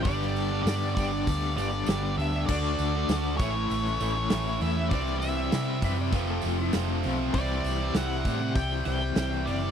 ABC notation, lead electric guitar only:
X:1
M:4/4
L:1/8
Q:1/4=99
K:Clyd
V:1 name="Lead electric guitar"
d2 d d2 d2 e | d3 ^c4 e | d e2 z4 z | d2 f2 g g2 d |]